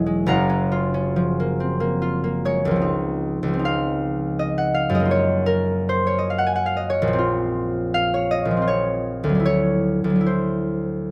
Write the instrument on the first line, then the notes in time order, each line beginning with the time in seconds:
harp
Already playing: E1 E2 E3 F#3 D#4 E4 D#5 E5 G#5 B5 D#6
0.06 G#3
0.26 F#1 F#2 F5 F#5 A#5
0.49 C#4
0.72 F4
0.94 C#4
1.16 F3
1.40 A#3
1.60 C4
1.80 A#3
2.02 F4
2.24 A#3
2.45 G#3 C#5
2.65 C#2 A#3
2.71 F3
2.76 C4
2.81 D#4
3.43 C#2
3.48 F3
3.53 C4
3.59 D#4
3.65 F5
4.39 D#5
4.58 F#5
4.74 F5
4.89 F#2
4.94 G#3 D#5
5.00 A#3
5.05 F4
5.11 C#5
5.46 A#4
5.89 C5
6.07 C#5
6.18 D#5
6.30 F5
6.38 F#5
6.46 G#5
6.56 F#5
6.66 F5
6.77 D#5
6.90 C#5
7.02 A#1
7.07 F3
7.13 C4
7.18 F4
7.94 F5
8.14 C#5
8.31 D#5
8.45 A#1
8.51 F3
8.57 C4
8.62 F4
8.68 C#5
9.24 D2
9.29 F#3
9.35 D4
9.40 E4
9.45 C#5
10.04 D2
10.10 F#3
10.15 D4
10.21 E4
10.26 C5